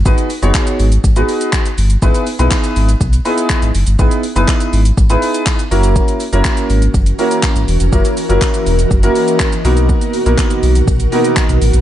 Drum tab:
HH |-xox-xox-xox-xox|-xox-xox-xox-xox|-xox-xox-xox-xox|-xox-xox-xox-xox|
SH |xxxxxxxxxxxxxxxx|xxxxxxxxxxxxxxxx|xxxxxxxxxxxxxxxx|xxxxxxxxxxxxxxxx|
CP |----x-------x---|----x-------x---|----x-------x---|----x-------x---|
BD |o---o---o---o---|o---o---o---o---|o---o---o---o---|o---o---o---o---|

HH |-xox-xox-xox-xox|-xox-xox-xox-xox|
SH |xxxxxxxxxxxxxxxx|xxxxxxxxxxxxxxxx|
CP |----x-------x---|----x-------x---|
BD |o---o---o---o---|o---o---o---o---|